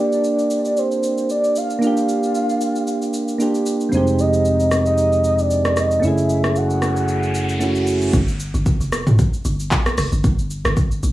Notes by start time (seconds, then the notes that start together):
Already playing: A#3 D4 F4 G4
0.00 D5
0.12 shaker
0.24 shaker
0.39 shaker
0.51 shaker
0.65 D5, shaker
0.77 C5, shaker
0.91 shaker
1.03 shaker
1.18 shaker
1.30 D5, shaker
1.44 shaker
1.56 F5, shaker
1.70 shaker
1.79 A#3 D4, shaker
1.84 F4 G4 F5
1.97 shaker
2.09 shaker
2.23 shaker
2.35 shaker
2.49 shaker
2.61 shaker
2.76 shaker
2.87 shaker
3.02 shaker
3.14 shaker
3.28 shaker
3.38 A#3 D4 F4 G4, shaker
3.55 shaker
3.66 shaker
3.81 shaker
3.89 F1 G3 C4, shaker
3.94 G#3 D#4 G4 C5
4.07 shaker
4.19 D#5, shaker
4.33 shaker
4.45 shaker
4.60 shaker
4.71 cross-stick, shaker
4.86 D#5, shaker
4.98 shaker
5.12 shaker
5.24 shaker
5.39 D5, shaker
5.51 shaker
5.65 cross-stick, shaker
5.77 D#5, cross-stick, shaker
5.91 shaker
6.00 F#1 A3 C#4, riser, shaker
6.05 E4 G#4 E5
6.18 shaker
6.29 shaker
6.44 cross-stick, shaker
6.56 F#5, shaker
6.70 shaker
6.82 cross-stick, shaker
6.96 shaker
7.08 shaker
7.23 shaker
7.35 shaker
7.49 shaker
7.59 A3 C#4 E4 F#4, shaker
7.75 shaker
7.87 shaker
8.02 shaker
8.13 G1, kick, shaker
8.28 shaker
8.40 shaker
8.54 G1, shaker
8.66 kick, shaker
8.81 F1, shaker
8.92 cross-stick, shaker
9.07 G1, mid tom, shaker
9.19 kick, shaker
9.33 shaker
9.45 G1, shaker
9.60 shaker
9.71 A#1, kick, clap, shaker
9.86 cross-stick, shaker
9.98 F1, cross-stick, open hi-hat, shaker
10.12 G1, shaker
10.24 G1, kick, shaker
10.39 shaker
10.50 shaker
10.65 G1, cross-stick, shaker
10.77 kick, shaker
10.91 shaker
11.03 A#1, shaker